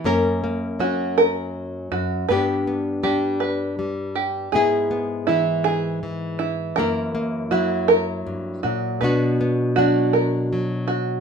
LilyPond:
<<
  \new Staff \with { instrumentName = "Five-string banjo" } { \time 3/4 \key fis \phrygian \tempo 4 = 80 ais'4 fis'8 ais'4 fis'8 | b'4 g'8 b'4 g'8 | gis'4 e'8 gis'4 e'8 | ais'4 fis'8 ais'4 fis'8 |
b'4 fis'8 ais'4 fis'8 | }
  \new Staff \with { instrumentName = "Nylon-string guitar" } { \time 3/4 \key fis \phrygian << { <ais cis' ais'>8 ais8 cis'2 | <b d' g'>8 b8 d'2 | <b e' gis'>8 b8 e'2 | <ais e' ais'>8 ais8 e'2 |
<b d' fis'>8 b8 d'2 | } \\ { fis,4 fis4. fis,8 | g,4 g4 g4 | gis,4 e4 e4 | fis,4 fis4 g,8 ais,8 |
b,4 fis4 fis4 | } >> }
>>